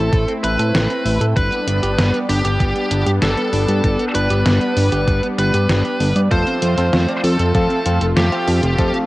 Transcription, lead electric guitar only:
Already playing: A4
0.44 B4
1.36 B4
2.29 G4
3.22 A4
4.15 B4
5.39 B4
6.31 C5
7.24 A4
8.17 G4

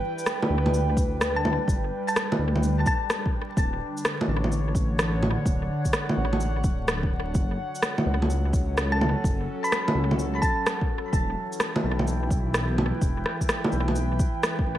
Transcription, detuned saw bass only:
0.50 D2
0.96 D2
1.68 G1
2.39 D2
3.57 D1
4.28 A1
4.75 A1
5.45 D1
6.17 A1
6.64 D1
7.35 F#1
8.06 C#2
8.53 C#2
9.24 F#1
9.95 C#2
11.12 E1
11.84 B1
12.30 B1
13.01 E1
13.72 B1
14.67 A1

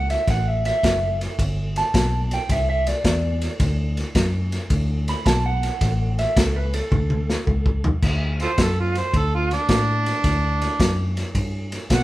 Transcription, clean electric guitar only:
0.10 E5
0.30 F#5
0.48 E5
0.66 E5
1.78 A5
2.34 G5
2.52 E5
2.70 E5
2.88 D5
5.09 B5
5.27 A5
5.46 F#5
6.19 E5
6.39 A4
6.56 B4
6.74 A4

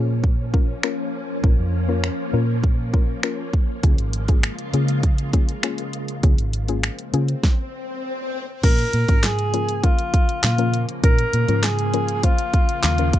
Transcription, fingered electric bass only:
Already playing: A#2
1.44 A#1
1.59 F2
2.34 A#2
3.83 C#2
3.99 G#1
4.73 C#3
6.23 C#2
6.38 G#1
7.14 C#3
8.64 A#2
8.94 A#2
9.09 G#2
10.44 A#2
11.04 A#2
11.34 A#2
11.49 G#2
12.83 D#2

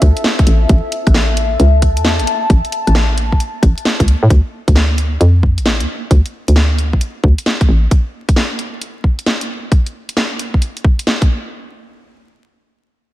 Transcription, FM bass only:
0.02 D2
0.47 A1
0.69 A1
1.07 A1
1.60 C#2
1.97 E2
2.20 A1
2.50 A1
2.87 A1
3.63 A1
4.00 C#2
4.23 A2
4.30 D2
4.68 D2
5.21 F2
5.58 A1
5.80 D2
6.11 D2
6.48 D2
7.24 D2
7.69 A1

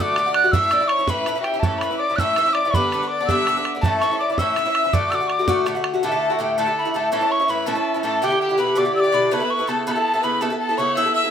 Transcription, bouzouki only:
0.00 A2 D3 A3 F#4
0.17 A2 D3 A3 F#4
0.26 D3 A3 F#4
0.44 D3 A3 F#4
0.53 A2 E3 C#4 E4
0.71 A2 E3 C#4 E4
0.80 E3 C#4 E4
0.99 E3 C#4 E4
1.08 A2 E3 C#4 E4
1.27 A2 E3 C#4 E4
1.35 E3 C#4 E4
1.54 E3 C#4 E4
1.63 A2 E3 C#4 E4
1.82 A2 E3 C#4 E4
1.91 E3 C#4 E4
2.10 E3 C#4 E4
2.19 A2 E3 C#4 E4
2.37 A2 E3 C#4 E4
2.46 E3 C#4 E4
2.65 E3 C#4 E4
2.74 G2 D3 B3 D4
2.93 G2 D3 B3 D4
3.02 D3 B3 D4
3.21 D3 B3 D4
3.29 G2 D3 B3 D4
3.48 G2 D3 B3 D4
3.57 D3 B3 D4
3.75 D3 B3 D4
3.84 A2 E3 C#4 E4
4.02 A2 E3 C#4 E4
4.11 E3 C#4 E4
4.30 E3 C#4 E4
4.39 A2 E3 C#4 E4
4.57 A2 E3 C#4 E4
4.66 E3 C#4 E4
4.84 E3 C#4 E4
4.93 A2 D3 A3 F#4
5.11 A2 D3 A3 F#4
5.21 D3 A3 F#4
5.39 D3 A3 F#4
5.48 A2 D3 A3 F#4
5.66 A2 D3 A3 F#4
5.75 D3 A3 F#4
5.94 D3 A3 F#4
6.03 A2 D3 A3 E4
6.12 D3 A3 E4
6.30 D3 A3 E4
6.39 A2 D3 A3 E4
6.58 A2 D3 A3 E4
6.66 D3 A3 E4
6.85 D3 A3 E4
6.94 A2 D3 A3 E4
7.12 A2 E3 C#4 E4
7.21 E3 C#4 E4
7.40 E3 C#4 E4
7.48 A2 E3 C#4 E4
7.66 A2 E3 C#4 E4
7.75 E3 C#4 E4
7.94 E3 C#4 E4
8.03 A2 E3 C#4 E4
8.22 B2 D3 E4 G4
8.30 D3 E4 G4
8.49 D3 E4 G4
8.58 B2 D3 E4 G4
8.75 B2 D3 E4 G4
8.85 D3 E4 G4
9.04 D3 E4 G4
9.12 B2 D3 E4 G4
9.31 C#3 B3 E4 A4
9.40 B3 E4 A4
9.59 B3 E4 A4
9.67 C#3 B3 E4 A4
9.87 C#3 B3 E4 A4
9.96 B3 E4 A4
10.14 B3 E4 A4
10.23 C#3 B3 E4 A4
10.41 C#3 B3 E4 A4
10.50 B3 E4 A4
10.69 B3 E4 A4
10.78 C#3 B3 E4 A4
10.97 C#3 B3 E4 A4
11.06 B3 E4 A4
11.24 B3 E4 A4

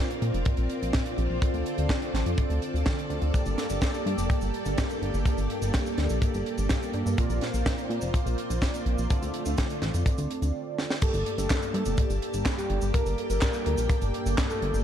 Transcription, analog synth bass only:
0.22 A#2
0.34 F1
0.58 A#1
0.82 A#1
1.18 A#1
1.30 A#1
1.54 D2
1.78 D2
2.14 A1
2.26 F2
2.50 D2
2.74 D2
3.10 D2
3.22 D2
3.46 G1
3.70 G1
4.06 G2
4.18 F1
4.42 G1
4.66 G1
5.02 G1
5.14 G1
5.38 G1
5.62 G1
5.98 D2
6.10 A#1
6.34 G1
6.58 G1
6.94 G2
7.06 G2
7.30 A#1
7.54 A#1
7.90 A#2
8.02 F1
8.26 A#1
8.50 A#1
8.86 A#1
8.98 A#1
9.22 D2
9.46 D2
9.82 A1
9.94 F2
10.18 D2
10.42 D2
11.14 G1
11.38 G1
11.74 G2
11.86 F1
12.10 G1
12.34 G1
12.70 G1
12.82 G1
13.06 G1
13.30 G1
13.66 D2
13.78 A#1
14.02 G1
14.26 G1
14.62 G1
14.74 G1

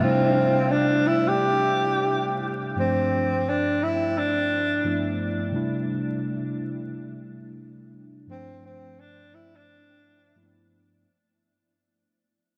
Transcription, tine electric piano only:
0.00 C3 G3 A3 D4
0.05 E4
2.76 G2 F3 A3 C4
2.80 D4
4.84 G2 F3 A3 B3 D4 E4
5.51 C3 G3 A3 D4
5.56 E4
8.27 G2 F3 A3 C4
8.31 D4
10.35 G2 F3 A3 A#3 D4 E4
10.43 B3

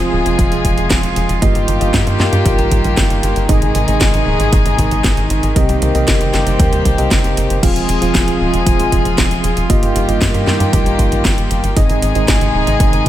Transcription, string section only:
Already playing: C3 F3 G#3 F4 G#4
1.42 D#3 G3 A#3 G4
3.49 C3 G#3 D#4 G#4
5.56 G3 A#3 C4 G4
7.63 C3 F3 G#3 F4 G#4
9.70 D#3 G3 A#3 G4
11.76 C3 D#3 G#3 D#4 G#4

